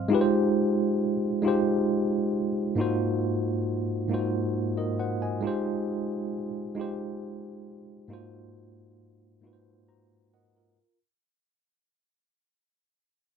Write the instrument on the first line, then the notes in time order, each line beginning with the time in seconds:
tine electric piano
Already playing: C5 F5 C6 F6
0.08 G#3 D#4 F4
0.13 G4 B4
0.21 C5
1.42 G#3 D#4 F4
1.46 G4 C5
2.75 G#2 A#3 D#4 F4
2.80 F#4 C5
4.09 G#2 A#3 D#4 F4
4.13 F#4 C5
4.78 A#4 D#5
5.00 C5 F#5
5.22 D#5 G#5
5.41 G#3 D#4 F4
5.45 G4 C5
6.75 G#3 D#4 F4
6.80 G4 C5
8.08 G#2 A#3 D#4 F4
8.12 F#4 C5
9.41 G#2 A#3 D#4 F4
9.45 F#4 B4
9.53 C5
9.89 F#4 C5 A#5
10.34 A#4 D#5 F#5
10.57 F4 A#4